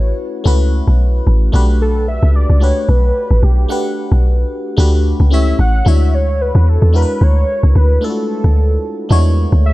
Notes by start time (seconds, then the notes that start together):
Already playing: A1 A3 C#4 E4 F#4 B4 C#5
0.44 C#2 A3 C#4 E4 F#4 B4
0.88 B1
1.27 A1
1.52 B1 A3 D4 F#4 G4 B4
1.81 A4
2.08 E5
2.23 C#2
2.35 D5
2.50 C#2
2.60 A3 D4 F#4 G4 B4 C#5
2.83 C#5
2.89 B1 B4
3.31 A1
3.43 B1 G4
3.68 A3 D4 G4 B4 F#5
4.12 B1
4.77 D2 A3 D4 F#4 G4 B4
5.20 C#2
5.30 A3 C#4 E4 G4 C#5 E5
5.59 A1 F#5
5.85 D2 G#3 D4 E4 F#4 C#5 E5
6.14 C#5
6.41 B4
6.55 E2
6.69 A4
6.82 E2
6.93 G#3 D4 E4 F#4 A#4 B4
7.02 B4
7.21 D2 C#5
7.63 C#2
7.75 D2 B4
8.01 A3 D4 E4 F4 A4
8.10 F#4
8.44 D2
9.09 E2 G#3 D4 E4 F#4 C#5
9.52 D2
9.65 E5